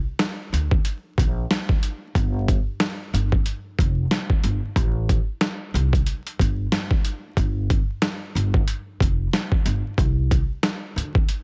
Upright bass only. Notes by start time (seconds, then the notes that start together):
0.53 D2
1.18 A#1
2.15 G1
3.13 G1
3.79 F1
4.44 G1
4.76 A1
5.74 C2
6.40 G1
7.37 G1
8.35 G1
9.01 F1
9.65 G1
9.98 C2
10.96 D2